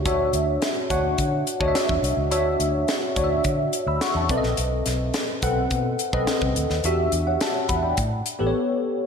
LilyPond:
<<
  \new Staff \with { instrumentName = "Tine electric piano" } { \time 4/4 \key d \major \tempo 4 = 106 << { r1 | r2 r8. <b'' e'''>16 <fis'' cis'''>16 <e'' a''>8 r16 | r1 | r8. <cis'' fis''>16 <e'' a''>8 <fis'' b''>16 <d'' g''>8 r4. r16 | } \\ { <d' fis' cis'' e''>4 r8 <d' fis' cis'' fis''>4 r16 <d' fis' cis'' ees'' e''>4 r16 | <d' fis' cis'' e''>4 r8 <d' fis' cis'' d'' e''>4 r4 <c' a' b' d'' dis''>8~ | <c' a' b' d'' dis''>4 r8 <c' a' b' fis''>4 r16 <c' a' b' dis''>4 r16 | <d' fis' g' e''>4 r4. r16 <b g' a' b' cis''>4 r16 | } >> }
  \new Staff \with { instrumentName = "Fingered electric bass" } { \clef bass \time 4/4 \key d \major d,8 d,8 r8 d,8 d8 r16 d,16 r16 e,16 c,16 cis,16 | d,8 d,8 r8 d,8 d8 r16 d,16 r16 e,16 b,,16 bes,,16 | b,,8 b,,8 r8 b,,8 b,8 r16 b,,16 r16 c,16 d,16 dis,16 | e,8 e,8 r8 e,8 a,8 r16 a,,16 r4 | }
  \new DrumStaff \with { instrumentName = "Drums" } \drummode { \time 4/4 <hh bd>8 hh8 <hh sn>8 <hh bd>8 <hh bd>8 hh16 bd16 <hh sn>16 bd16 hh8 | hh8 hh8 <hh sn>8 <hh bd>8 <hh bd>8 hh8 <hh sn>8 <hh bd>16 sn16 | hh8 <hh sn>8 <hh sn>8 <hh bd>8 <hh bd>8 hh16 bd16 <hh sn>16 bd16 hh16 sn16 | hh8 hh8 <hh sn>8 <hh bd>8 <hh bd>8 hh8 r4 | }
>>